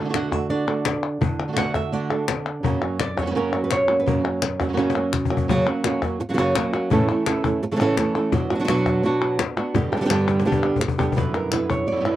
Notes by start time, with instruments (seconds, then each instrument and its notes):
Already playing: nylon-string guitar D3 F#4 A4 D5
0.00 nylon-string guitar D3 A3 D4 F#4
0.05 nylon-string guitar D3 A3 D4 F#4
0.09 nylon-string guitar D3 A3 D4 F#4
0.14 nylon-string guitar D3 A3 D4 F#4 F#5, cajon slap, clap
0.31 nylon-string guitar A3 D4 F#4 E5, cajon bass, cajon slap
0.49 nylon-string guitar D3 A3 D4 F#4 D5
0.67 nylon-string guitar A3 D4 F#4 A4
0.85 muted nylon-string guitar stroke, cajon slap, clap
1.21 nylon-string guitar D3, muted nylon-string guitar stroke, cajon bass
1.48 nylon-string guitar D3 A3 D4 F#4
1.52 nylon-string guitar D3 A3 D4 F#4
1.57 nylon-string guitar D3 A3 D4 F#4 F#5, cajon slap, clap
1.74 nylon-string guitar A3 D4 F#4 E5, cajon bass, cajon slap
1.92 nylon-string guitar D3 A3 D4 F#4 D5
2.10 nylon-string guitar A3 D4 F#4 A4
2.28 muted nylon-string guitar stroke, cajon slap, clap
2.47 cajon slap
2.63 nylon-string guitar F#2 C#3 F#3 A#3 C#4 F#4, cajon bass
2.82 nylon-string guitar F#3 A#3 C#4 F#4
3.00 nylon-string guitar D5, muted nylon-string guitar stroke, cajon slap, clap
3.17 nylon-string guitar F#3 A#3 C#4 F#4 C#5, cajon bass, cajon slap
3.21 nylon-string guitar C#3 F#3 A#3 C#4 F#4
3.26 nylon-string guitar C#3 F#3 A#3 C#4 F#4 B4
3.31 nylon-string guitar C#3 F#3 A#3 C#4 F#4
3.35 nylon-string guitar F#2 C#3 F#3 A#3 C#4 F#4 A#4
3.53 nylon-string guitar F#3 A#3 C#4 F#4
3.64 nylon-string guitar B4
3.71 nylon-string guitar C#5, muted nylon-string guitar stroke, cajon slap, clap
3.89 nylon-string guitar F#3 A#3 C#4 F#4, cajon slap
4.00 nylon-string guitar B4
4.06 nylon-string guitar F#2 C#3 F#3 A#3 C#4 F#4 A#4, cajon bass
4.24 nylon-string guitar F#3 A#3 C#4 F#4
4.42 muted nylon-string guitar stroke, cajon slap, clap
4.60 nylon-string guitar F#3 A#3 C#4 F#4, cajon bass, cajon slap
4.69 nylon-string guitar C#3 F#3 A#3 C#4 F#4
4.73 nylon-string guitar C#3 F#3 A#3 C#4 F#4
4.77 nylon-string guitar F#2 C#3 F#3 A#3 C#4 F#4, cajon slap
4.90 cajon slap
4.95 nylon-string guitar F#3 A#3 C#4 F#4
5.13 muted nylon-string guitar stroke, cajon bass, clap
5.25 cajon bass
5.31 nylon-string guitar F#3 A#3 C#4 F#4
5.37 cajon bass
5.48 nylon-string guitar F#2 C#3 F#3 A#3 C#4 F#4, cajon bass
5.66 nylon-string guitar F#3 A#3 C#4 F#4
5.84 nylon-string guitar F#3 A#3 C#4 F#4, cajon slap, clap
6.02 nylon-string guitar F#3 A#3 C#4 F#4, cajon bass, cajon slap
6.20 muted nylon-string guitar stroke
6.29 nylon-string guitar C#3 F#3 A#3 C#4 F#4
6.33 nylon-string guitar C#3 F#3 A#3 C#4 F#4
6.38 nylon-string guitar F#2 C#3 F#3 A#3 C#4 F#4
6.55 nylon-string guitar F#3 A#3 C#4 F#4, cajon slap, clap
6.73 nylon-string guitar F#3 A#3 C#4 F#4, cajon slap
6.90 nylon-string guitar A2 C#3 E3 A3 C#4 E4 A4, cajon bass
7.08 nylon-string guitar E3 A3 C#4 E4 A4, cajon slap
7.26 nylon-string guitar E3 A3 C#4 E4 A4, cajon slap, clap
7.44 nylon-string guitar A3 C#4 E4, cajon bass
7.63 muted nylon-string guitar stroke
7.71 nylon-string guitar C#3 E3 A3 C#4 A4
7.76 nylon-string guitar C#3 E3 A3 C#4 A4
7.80 nylon-string guitar A2 C#3 E3 A3 C#4 E4 A4
7.97 nylon-string guitar E3 A3 C#4 E4 A4, cajon slap, clap
8.15 nylon-string guitar E3 A3 C#4 A4, cajon slap
8.32 nylon-string guitar B2 F#3 B3 D4 F#4, muted nylon-string guitar stroke, cajon bass
8.50 nylon-string guitar B3 D4 F#4, cajon slap
8.55 nylon-string guitar F#3 D4 F#4
8.60 nylon-string guitar F#3 B3 D4 F#4
8.64 nylon-string guitar B2 F#3 B3 D4 F#4, cajon slap
8.68 nylon-string guitar F#3 B3 D4 F#4, clap
8.86 cajon bass, cajon slap
9.03 nylon-string guitar B2 F#3 B3 D4 F#4, muted nylon-string guitar stroke
9.21 nylon-string guitar B3 D4 F#4
9.39 muted nylon-string guitar stroke, cajon slap, clap
9.57 nylon-string guitar B3 D4 F#4, cajon slap
9.74 nylon-string guitar G2 B2 D3 G3 B3 G4, muted nylon-string guitar stroke, cajon bass
9.92 nylon-string guitar D3 G3 B3 D4 G4, cajon slap
9.96 nylon-string guitar D3 B3 D4 G4
10.01 nylon-string guitar D3 G3 B3 D4 G4
10.05 nylon-string guitar D3 G3 B3 D4 G4
10.10 nylon-string guitar G2 D3 G3 B3 D4 G4, cajon slap, clap
10.28 cajon slap
10.39 cajon slap
10.45 nylon-string guitar G2 D3 G3 B3 D4 G4, muted nylon-string guitar stroke
10.52 cajon bass
10.63 nylon-string guitar D3 G3 B3 G4
10.76 cajon bass
10.81 muted nylon-string guitar stroke, clap
10.88 cajon bass
10.98 nylon-string guitar D3 G3 B3 D4 G4, cajon bass
11.12 nylon-string guitar B2, cajon bass
11.16 nylon-string guitar F#2 D3 G3 B3 E4 B4, cajon bass
11.35 nylon-string guitar A#4, cajon slap
11.52 nylon-string guitar D3 G3 B3 E4 B4, cajon slap, clap
11.70 nylon-string guitar C#5, cajon bass
11.87 nylon-string guitar D5, muted nylon-string guitar stroke
11.91 nylon-string guitar B2 D3 G3 B3 E4
11.96 nylon-string guitar B2 D3 G3 B3 E4
12.00 nylon-string guitar B2 D3 G3 B3 E4
12.05 nylon-string guitar F#2 B2 D3 G3 B3 E4 B4